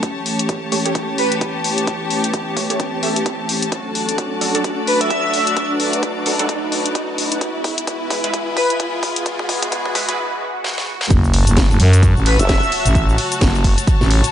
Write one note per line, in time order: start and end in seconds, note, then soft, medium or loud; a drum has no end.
0.00 3.68 E3 medium
0.00 3.68 A3 medium
0.00 3.68 C#4 medium
0.00 3.68 G4 medium
0.00 3.72 G4 medium
0.00 3.72 C#5 medium
0.00 7.41 A5 medium
0.00 kick loud
0.00 closed hi-hat soft
0.00 riser medium
0.26 open hi-hat loud
0.39 closed hi-hat medium
0.49 kick loud
0.49 closed hi-hat soft
0.72 0.84 A3 medium
0.72 0.84 G4 medium
0.72 0.84 C#5 medium
0.72 open hi-hat loud
0.86 1.01 A3 medium
0.86 1.01 G4 medium
0.86 1.01 C#5 loud
0.86 closed hi-hat medium
0.95 kick loud
0.95 closed hi-hat soft
1.18 1.29 B4 medium
1.18 open hi-hat loud
1.32 closed hi-hat medium
1.41 kick loud
1.41 closed hi-hat soft
1.64 open hi-hat medium
1.78 closed hi-hat medium
1.87 kick loud
1.87 closed hi-hat soft
2.10 open hi-hat loud
2.24 closed hi-hat medium
2.34 kick loud
2.34 closed hi-hat soft
2.57 2.68 A3 medium
2.57 2.68 G4 medium
2.57 2.68 C#5 medium
2.57 kick medium
2.57 open hi-hat medium
2.70 2.85 A3 medium
2.70 2.85 G4 medium
2.70 2.85 C#5 loud
2.70 closed hi-hat medium
2.80 kick loud
2.80 closed hi-hat soft
3.03 3.71 A3 medium
3.03 3.71 G4 medium
3.03 3.71 E5 loud
3.03 open hi-hat loud
3.16 closed hi-hat medium
3.26 kick loud
3.26 closed hi-hat soft
3.49 open hi-hat medium
3.62 closed hi-hat medium
3.72 7.38 F#3 medium
3.72 7.38 A3 medium
3.72 7.38 D4 medium
3.72 8.80 F#4 medium
3.72 5.55 A4 medium
3.72 kick loud
3.72 closed hi-hat soft
3.95 8.32 D5 medium
3.95 open hi-hat loud
4.09 closed hi-hat medium
4.18 kick loud
4.18 closed hi-hat soft
4.41 4.53 F#3 medium
4.41 4.53 D4 medium
4.41 4.53 A4 medium
4.41 open hi-hat medium
4.55 4.70 F#3 medium
4.55 4.70 D4 medium
4.55 4.70 A4 loud
4.55 closed hi-hat medium
4.64 kick medium
4.64 closed hi-hat soft
4.87 4.98 B4 medium
4.87 open hi-hat loud
5.01 5.65 E5 loud
5.01 closed hi-hat medium
5.10 kick medium
5.10 closed hi-hat soft
5.34 open hi-hat medium
5.47 closed hi-hat medium
5.57 7.39 B4 medium
5.57 kick loud
5.57 closed hi-hat soft
5.80 open hi-hat loud
5.93 closed hi-hat medium
6.03 kick loud
6.03 closed hi-hat soft
6.26 6.37 F#3 medium
6.26 6.37 D4 medium
6.26 6.37 A4 medium
6.26 open hi-hat medium
6.39 6.55 F#3 medium
6.39 6.55 D4 medium
6.39 6.55 A4 loud
6.39 closed hi-hat medium
6.49 kick loud
6.49 closed hi-hat soft
6.72 open hi-hat loud
6.86 closed hi-hat medium
6.95 kick loud
6.95 closed hi-hat medium
7.18 open hi-hat medium
7.32 closed hi-hat medium
7.41 11.07 E3 medium
7.41 11.07 G#3 medium
7.41 11.07 B3 medium
7.41 10.18 E4 medium
7.41 11.07 G#4 medium
7.41 kick loud
7.41 closed hi-hat medium
7.64 kick loud
7.64 open hi-hat loud
7.68 10.18 B4 medium
7.78 closed hi-hat medium
7.87 kick loud
7.87 closed hi-hat medium
7.95 10.18 G#5 medium
8.10 8.22 G#3 medium
8.10 8.22 E4 medium
8.10 8.22 B4 medium
8.10 kick loud
8.10 open hi-hat medium
8.24 8.39 G#3 loud
8.24 8.39 E4 medium
8.24 8.39 B4 loud
8.24 closed hi-hat medium
8.34 kick loud
8.34 closed hi-hat medium
8.57 8.67 B4 medium
8.57 kick loud
8.57 open hi-hat loud
8.70 closed hi-hat medium
8.80 kick loud
8.80 closed hi-hat medium
9.03 kick loud
9.03 open hi-hat medium
9.16 closed hi-hat medium
9.26 kick loud
9.26 closed hi-hat medium
9.39 kick medium
9.49 kick loud
9.49 open hi-hat loud
9.62 kick medium
9.62 closed hi-hat medium
9.72 kick loud
9.72 closed hi-hat medium
9.86 kick loud
9.95 10.07 G#3 medium
9.95 10.07 E4 medium
9.95 10.07 B4 medium
9.95 kick loud
9.95 open hi-hat medium
10.09 10.18 G#3 medium
10.09 10.18 E4 medium
10.09 10.18 B4 loud
10.09 kick medium
10.09 closed hi-hat medium
10.18 swell medium
10.64 snare medium
10.78 snare medium
11.01 snare medium
11.10 11.45 F#1 loud
11.10 14.32 C#3 medium
11.10 14.32 F#3 medium
11.10 14.32 A3 medium
11.10 14.32 F#4 medium
11.10 kick loud
11.10 closed hi-hat medium
11.10 ride medium
11.10 sub drop medium
11.10 shaker medium
11.24 shaker soft
11.34 open hi-hat loud
11.34 ride medium
11.38 14.32 A5 medium
11.47 11.68 F#1 loud
11.47 closed hi-hat medium
11.47 shaker medium
11.57 kick loud
11.57 snare loud
11.57 closed hi-hat medium
11.57 ride medium
11.57 shaker medium
11.70 11.78 F#1 loud
11.70 shaker soft
11.78 12.14 F#2 loud
11.78 14.32 C#5 medium
11.78 open hi-hat medium
11.78 ride medium
11.93 closed hi-hat medium
11.93 shaker medium
12.03 kick loud
12.03 closed hi-hat medium
12.03 ride medium
12.03 shaker medium
12.16 12.37 A1 medium
12.16 shaker soft
12.26 12.37 B4 medium
12.26 open hi-hat loud
12.26 ride medium
12.39 12.60 F#1 loud
12.39 13.03 E5 loud
12.39 closed hi-hat medium
12.39 shaker medium
12.49 kick loud
12.49 snare loud
12.49 closed hi-hat medium
12.49 ride medium
12.49 shaker medium
12.63 shaker soft
12.72 open hi-hat medium
12.72 ride medium
12.86 13.17 A1 loud
12.86 closed hi-hat medium
12.86 shaker medium
12.95 kick loud
12.95 closed hi-hat medium
12.95 ride medium
12.95 shaker medium
13.09 shaker soft
13.18 open hi-hat loud
13.18 ride medium
13.32 closed hi-hat medium
13.32 shaker medium
13.41 13.76 F#1 loud
13.41 kick loud
13.41 snare loud
13.41 closed hi-hat medium
13.41 ride medium
13.41 shaker medium
13.55 shaker soft
13.64 kick medium
13.64 open hi-hat loud
13.64 ride medium
13.78 closed hi-hat medium
13.78 shaker medium
13.87 kick loud
13.87 closed hi-hat medium
13.87 ride medium
13.87 shaker medium
14.01 14.22 A1 loud
14.01 snare soft
14.01 shaker soft
14.11 open hi-hat loud
14.11 ride medium
14.24 closed hi-hat medium
14.24 shaker medium